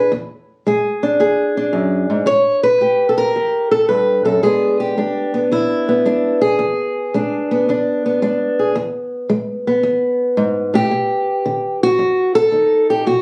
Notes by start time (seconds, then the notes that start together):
Already playing: D4 B4
0.12 E2
0.67 G#3 G#4
1.03 D4
1.20 E2 G#4
1.57 D4
1.73 F#2
2.10 G#2
2.26 A2 C#5
2.63 B4
2.81 A3 G4
3.09 A4
3.18 A#4
3.36 E2 G4
3.71 A4
3.89 G2 B4
4.25 F#2 A4
4.43 E2 G#3 B3 D4 G#4
4.80 G4
4.97 G#3 D4
5.34 B3
5.52 E2 E4
5.89 B3
6.06 G#3 D4
6.42 G#4
6.59 E2
7.14 G#3 D4
7.51 B3
7.69 E2 D4
8.06 B3
8.22 G#3 D4
8.59 G#4
8.75 E2
9.29 G#3
9.67 B3
9.83 E2
10.37 G#2
10.74 A2 G4
10.91 B2
11.46 D#3
11.83 F#4
11.99 F#2
12.35 A4
12.52 D#3 D#4
12.90 G4
13.07 B2 F#4